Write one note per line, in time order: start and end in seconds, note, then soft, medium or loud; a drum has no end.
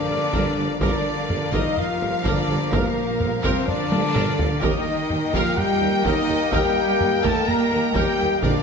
0.00 0.80 D3 loud
0.00 0.77 F3 medium
0.00 0.77 A#3 medium
0.00 0.81 D4 loud
0.00 0.77 G4 medium
0.00 0.77 A#4 medium
0.00 0.80 D5 medium
0.00 0.77 F5 medium
0.10 0.20 G1 medium
0.10 0.18 G1 medium
0.10 0.19 A#4 medium
0.33 0.42 G1 medium
0.33 0.44 G1 medium
0.33 0.55 A#4 medium
0.33 taiko loud
0.57 0.67 G1 medium
0.57 0.66 G1 medium
0.57 0.65 A4 medium
0.80 0.91 G1 medium
0.80 0.90 G1 loud
0.80 1.51 D3 medium
0.80 4.46 F3 medium
0.80 4.59 A#3 medium
0.80 4.46 A#3 medium
0.80 1.52 D4 loud
0.80 4.59 G4 medium
0.80 4.59 A#4 medium
0.80 1.03 A#4 medium
0.80 4.59 A#4 medium
0.80 1.51 D5 medium
0.80 4.58 F5 medium
0.80 4.59 F5 medium
0.80 taiko loud
1.29 1.39 G1 medium
1.29 1.38 G1 medium
1.29 1.37 A#4 medium
1.29 taiko low-mid medium
1.52 1.61 G1 medium
1.52 1.63 G1 medium
1.52 1.77 D#3 medium
1.52 1.77 D#4 loud
1.52 1.75 A#4 medium
1.52 1.76 D#5 medium
1.52 1.77 D#5 medium
1.52 taiko medium
1.76 2.24 F3 medium
1.76 2.25 F4 loud
1.76 2.24 F5 medium
1.76 2.25 F5 medium
1.76 taiko low-mid medium
2.01 2.10 G1 medium
2.01 2.09 A#4 medium
2.23 2.34 G1 medium
2.23 2.72 D3 medium
2.23 2.72 D4 loud
2.23 2.47 A#4 medium
2.23 2.72 D5 medium
2.23 2.73 D5 loud
2.23 taiko medium
2.48 2.58 G1 medium
2.48 2.57 G1 medium
2.48 2.57 A4 medium
2.71 2.82 G1 medium
2.71 2.81 G1 loud
2.71 3.44 A#2 medium
2.71 3.42 A#3 medium
2.71 3.43 A#4 medium
2.71 2.94 A#4 medium
2.71 3.43 A#4 medium
2.71 taiko loud
3.19 3.29 G1 medium
3.19 3.30 G1 medium
3.19 3.27 A#4 medium
3.19 taiko low-mid medium
3.42 3.53 G1 medium
3.42 3.67 C3 medium
3.42 3.68 C4 loud
3.42 3.65 A#4 loud
3.42 3.66 C5 medium
3.42 3.68 C5 loud
3.42 taiko medium
3.67 4.61 D3 loud
3.67 4.45 D4 loud
3.67 4.61 D5 medium
3.67 4.64 D5 loud
3.67 taiko low-mid medium
3.90 3.99 G1 medium
3.90 4.01 G1 medium
3.90 3.98 A#4 medium
3.90 taiko high medium
4.14 4.25 G1 medium
4.14 4.24 G1 loud
4.14 4.37 A#4 medium
4.14 taiko mid medium
4.38 4.49 G1 medium
4.38 4.47 G1 medium
4.38 4.46 A4 medium
4.38 taiko low loud
4.61 4.71 D#2 loud
4.61 4.72 D#2 loud
4.61 5.34 D#3 loud
4.61 8.39 G3 medium
4.61 8.38 A#3 medium
4.61 8.39 A#3 medium
4.61 5.32 D#4 loud
4.61 8.39 G4 medium
4.61 4.84 A#4 medium
4.61 8.38 A#4 medium
4.61 5.17 D#5 loud
4.61 8.43 D#5 medium
4.61 5.33 D#5 medium
4.61 8.38 G5 medium
4.61 taiko loud
5.10 5.18 D#2 medium
5.10 5.20 D#2 medium
5.10 5.18 A#4 medium
5.10 taiko low-mid medium
5.34 5.42 D#2 medium
5.34 5.44 D#2 medium
5.34 5.58 F3 loud
5.34 5.58 F4 loud
5.34 5.56 A#4 loud
5.34 5.57 F5 loud
5.34 5.58 F5 medium
5.34 taiko medium
5.57 6.05 G3 loud
5.57 6.05 G4 loud
5.57 6.05 G5 medium
5.57 6.04 G5 loud
5.57 taiko low-mid medium
5.81 5.91 D#2 medium
5.81 5.89 D#2 medium
5.81 5.89 A#4 medium
6.04 6.12 D#2 loud
6.04 6.14 D#2 loud
6.04 6.53 D#3 loud
6.04 6.53 D#4 loud
6.04 6.27 A#4 medium
6.04 6.52 D#5 loud
6.04 6.53 D#5 loud
6.04 taiko medium
6.28 6.38 D#2 medium
6.28 6.37 D#2 medium
6.28 6.36 A4 medium
6.52 6.60 D#2 loud
6.52 6.62 D#2 loud
6.52 7.24 G3 loud
6.52 7.22 G4 loud
6.52 6.75 A#4 medium
6.52 7.24 G5 loud
6.52 taiko medium
7.00 7.10 D#2 medium
7.00 7.09 D#2 medium
7.00 7.08 A#4 medium
7.00 taiko low-mid medium
7.23 7.33 D#2 loud
7.23 7.32 D#2 loud
7.23 7.47 A3 loud
7.23 7.48 A4 loud
7.23 7.46 A#4 loud
7.23 7.47 A5 loud
7.23 7.48 A5 loud
7.23 taiko medium
7.47 7.94 A#3 loud
7.47 7.96 A#4 loud
7.47 7.95 A#5 loud
7.47 taiko low-mid medium
7.70 7.81 D#2 medium
7.70 7.80 D#2 medium
7.70 7.78 A#4 medium
7.94 8.03 D#2 loud
7.94 8.04 D#2 loud
7.94 8.42 G3 loud
7.94 8.42 G4 loud
7.94 8.17 A#4 loud
7.94 8.42 G5 medium
7.94 8.43 G5 loud
7.94 taiko medium
8.19 8.27 D#2 medium
8.19 8.29 D#2 medium
8.19 8.27 A4 medium
8.42 8.52 A#1 medium
8.42 8.51 A#1 loud
8.42 8.63 D3 loud
8.42 8.63 F3 medium
8.42 8.63 A#3 medium
8.42 8.63 D4 loud
8.42 8.63 F4 medium
8.42 8.63 A#4 medium
8.42 8.63 A#4 loud
8.42 8.63 D5 loud
8.42 8.63 D5 medium
8.42 8.63 F5 loud
8.42 8.63 F5 medium
8.42 taiko loud